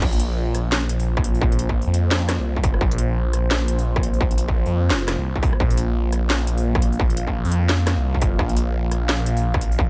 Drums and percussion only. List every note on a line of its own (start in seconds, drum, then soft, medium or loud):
0.02 kick loud
0.02 crash medium
0.13 closed hi-hat soft
0.20 closed hi-hat medium
0.55 cross-stick soft
0.55 closed hi-hat medium
0.72 snare loud
0.89 closed hi-hat medium
1.00 open hi-hat medium
1.17 kick loud
1.17 cross-stick medium
1.24 closed hi-hat medium
1.35 open hi-hat soft
1.41 kick loud
1.52 closed hi-hat soft
1.59 closed hi-hat medium
1.69 kick medium
1.82 open hi-hat soft
1.94 closed hi-hat medium
2.11 snare loud
2.29 cross-stick medium
2.29 snare medium
2.29 closed hi-hat medium
2.56 kick medium
2.64 kick loud
2.64 closed hi-hat medium
2.74 cross-stick medium
2.81 kick loud
2.91 closed hi-hat soft
2.98 closed hi-hat medium
3.33 cross-stick soft
3.33 closed hi-hat medium
3.51 snare loud
3.68 closed hi-hat medium
3.79 open hi-hat medium
3.96 kick loud
3.96 cross-stick medium
4.03 closed hi-hat medium
4.14 open hi-hat soft
4.21 kick loud
4.31 closed hi-hat soft
4.38 closed hi-hat medium
4.48 kick medium
4.66 open hi-hat soft
4.90 snare loud
5.08 cross-stick medium
5.08 snare medium
5.08 closed hi-hat medium
5.36 kick medium
5.43 kick loud
5.43 open hi-hat soft
5.53 cross-stick medium
5.60 kick loud
5.70 closed hi-hat soft
5.78 closed hi-hat medium
6.12 cross-stick soft
6.12 closed hi-hat medium
6.30 snare loud
6.47 closed hi-hat medium
6.58 open hi-hat medium
6.75 kick loud
6.75 cross-stick medium
6.82 closed hi-hat medium
6.92 open hi-hat soft
7.00 kick loud
7.10 closed hi-hat soft
7.17 closed hi-hat medium
7.27 kick medium
7.45 open hi-hat soft
7.49 closed hi-hat medium
7.49 open hi-hat soft
7.69 snare loud
7.87 cross-stick medium
7.87 snare medium
7.87 closed hi-hat medium
8.15 kick medium
8.22 kick loud
8.22 closed hi-hat medium
8.39 kick loud
8.39 cross-stick medium
8.49 closed hi-hat soft
8.57 closed hi-hat medium
8.91 cross-stick soft
8.91 closed hi-hat medium
9.09 snare loud
9.26 closed hi-hat medium
9.37 open hi-hat medium
9.54 kick loud
9.54 cross-stick medium
9.61 closed hi-hat medium
9.72 open hi-hat soft
9.79 kick loud